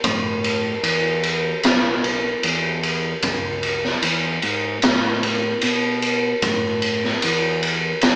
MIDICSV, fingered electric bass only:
0, 0, Header, 1, 2, 480
1, 0, Start_track
1, 0, Tempo, 798935
1, 23, Time_signature, 4, 2, 24, 8
1, 4900, End_track
2, 0, Start_track
2, 0, Title_t, "Fingered electric bass"
2, 0, Program_c, 0, 33
2, 23, Note_on_c, 0, 45, 98
2, 439, Note_off_c, 0, 45, 0
2, 499, Note_on_c, 0, 40, 88
2, 916, Note_off_c, 0, 40, 0
2, 984, Note_on_c, 0, 35, 90
2, 1399, Note_off_c, 0, 35, 0
2, 1464, Note_on_c, 0, 40, 89
2, 1879, Note_off_c, 0, 40, 0
2, 1941, Note_on_c, 0, 37, 99
2, 2357, Note_off_c, 0, 37, 0
2, 2419, Note_on_c, 0, 40, 93
2, 2628, Note_off_c, 0, 40, 0
2, 2662, Note_on_c, 0, 44, 80
2, 2871, Note_off_c, 0, 44, 0
2, 2902, Note_on_c, 0, 45, 84
2, 3318, Note_off_c, 0, 45, 0
2, 3381, Note_on_c, 0, 47, 91
2, 3797, Note_off_c, 0, 47, 0
2, 3861, Note_on_c, 0, 45, 93
2, 4276, Note_off_c, 0, 45, 0
2, 4346, Note_on_c, 0, 40, 92
2, 4759, Note_off_c, 0, 40, 0
2, 4820, Note_on_c, 0, 35, 94
2, 4900, Note_off_c, 0, 35, 0
2, 4900, End_track
0, 0, End_of_file